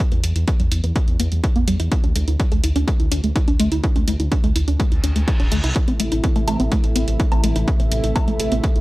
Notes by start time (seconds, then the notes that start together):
0.00 E4
0.12 E2 B3, closed hi-hat
0.24 E2 G3, closed hi-hat
0.36 E2 E4, closed hi-hat
0.48 B3, kick, closed hi-hat
0.60 E2 G3, closed hi-hat
0.72 E2 E4, closed hi-hat
0.84 E2 B3, closed hi-hat
0.96 G3, kick, closed hi-hat
1.08 E2 E4, closed hi-hat
1.20 E2 B3, closed hi-hat
1.32 E2 G3, closed hi-hat
1.44 E4, kick, closed hi-hat
1.56 E2 B3, closed hi-hat
1.68 E2 G3, closed hi-hat
1.80 E2 E4, closed hi-hat
1.92 E4, kick, closed hi-hat
2.04 D2 D4, closed hi-hat
2.15 D2 A3, closed hi-hat
2.28 D2 E4, closed hi-hat
2.40 D4, kick, closed hi-hat
2.52 D2 A3, closed hi-hat
2.64 D2 E4, closed hi-hat
2.76 D2 D4, closed hi-hat
2.88 A3, kick, closed hi-hat
3.00 D2 E4, closed hi-hat
3.12 D2 D4, closed hi-hat
3.24 D2 A3, closed hi-hat
3.36 E4, kick, closed hi-hat
3.48 D2 D4, closed hi-hat
3.60 D2 A3, closed hi-hat
3.72 D2 E4, closed hi-hat
3.84 E4, kick, closed hi-hat
3.96 D2 D4, closed hi-hat
4.08 D2 A3, closed hi-hat
4.20 D2 E4, closed hi-hat
4.32 D4, kick, closed hi-hat
4.44 D2 A3, closed hi-hat
4.56 D2 E4, closed hi-hat
4.68 D2 D4, closed hi-hat
4.80 A3, kick, closed hi-hat, reverse cymbal
4.92 D2 E4, closed hi-hat
5.04 D2 D4, closed hi-hat
5.16 D2 A3, closed hi-hat
5.28 E4, kick, closed hi-hat
5.40 D1 D4, closed hi-hat
5.52 D2 A3, closed hi-hat
5.64 C2 E4, closed hi-hat
5.76 C3 E3 A3 E4, kick, closed hi-hat
5.88 A1 C4, closed hi-hat
6.00 A1 A3, closed hi-hat
6.12 A1 E4, closed hi-hat
6.24 C4, kick, closed hi-hat
6.36 A1 A3, closed hi-hat
6.48 A1 A3, closed hi-hat, low woodblock
6.60 A1 C4, closed hi-hat
6.72 A3, kick, closed hi-hat
6.84 A1 E4, closed hi-hat
6.96 A1 C4, closed hi-hat
7.08 A1 A3, closed hi-hat
7.20 E4, kick, closed hi-hat
7.32 A1 C4, closed hi-hat, low woodblock
7.44 A1 A3, closed hi-hat
7.56 A1 E4, closed hi-hat
7.68 E4, kick, closed hi-hat
7.80 A1 C4, closed hi-hat
7.92 A1 A3, closed hi-hat
8.04 A1 E4, closed hi-hat
8.16 C4, kick, closed hi-hat, low woodblock
8.28 A1 A3, closed hi-hat
8.40 A1 A3, closed hi-hat
8.52 A1 C4, closed hi-hat
8.64 A3, kick, closed hi-hat
8.76 A1 E4, closed hi-hat